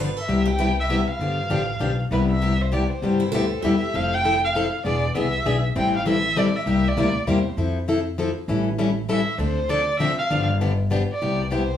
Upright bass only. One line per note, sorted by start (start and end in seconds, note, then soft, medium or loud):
0.00 0.11 G1 medium
0.29 1.02 C2 medium
1.19 1.44 G1 medium
1.50 1.76 A1 medium
1.80 2.06 B1 medium
2.11 2.84 C2 medium
3.02 3.26 G1 medium
3.33 3.59 D2 medium
3.63 3.89 E2 medium
3.94 4.67 F1 medium
4.85 5.09 E1 medium
5.15 5.41 C2 medium
5.45 5.71 B1 medium
5.76 6.48 A1 medium
6.66 6.90 C2 medium
6.96 7.22 D2 medium
7.27 7.53 E2 medium
7.57 8.30 F2 medium
8.48 9.21 A1 medium
9.38 10.11 D2 medium
10.31 11.03 G1 medium
11.22 11.77 C2 medium